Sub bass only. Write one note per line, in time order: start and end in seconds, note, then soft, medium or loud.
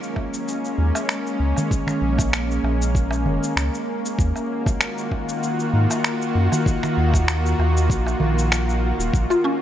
0.78 0.92 D#2 medium
1.40 1.53 C#2 medium
2.02 2.59 A#1 medium
2.63 3.27 A#1 loud
3.25 3.39 F1 loud
3.56 3.70 C#2 loud
4.19 4.32 D#2 loud
5.73 5.87 G#2 medium
6.35 6.48 F#2 medium
6.97 7.54 D#2 medium
7.59 7.89 D#2 loud
7.90 8.15 A#1 medium
8.21 8.93 A#1 medium
8.99 9.10 D#1 medium
9.13 9.27 A#1 medium